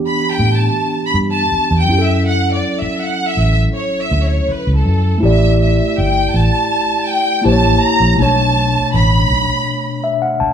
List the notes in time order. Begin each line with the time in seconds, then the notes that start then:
Already playing: E3 B3 D4 G4
0.07 B5
0.32 G5
0.39 A2
0.56 A5
1.06 B5
1.14 G2
1.31 A5
1.52 muted fingered electric bass stroke
1.71 E2
1.79 G5
1.84 F#3 C#4
1.89 F#2 E4 G4
1.98 A4
2.03 E5
2.28 F#5
2.54 D5
2.79 E5, muted fingered electric bass stroke
3.03 F#5
3.27 E5
3.37 A1
3.52 E5
3.75 C#5
4.00 E5
4.11 D2
4.25 C#5
4.48 B4, muted fingered electric bass stroke
4.67 C#2
4.75 A4
4.85 F#2
5.18 A3 E4
5.23 A1 G4 D5 E5
5.61 E5
5.98 G1 G5
6.34 A1 A5
7.09 G5
7.42 A#1 A#3 E4 G4 A5
7.46 C5
7.52 C#5
7.64 A1
7.82 A#5
8.00 A#1
8.15 B2 A3
8.19 B1 D4 C#5 A5
8.93 A1 B5
9.30 B1
10.04 E5
10.22 F#5
10.40 A5, muted fingered electric bass stroke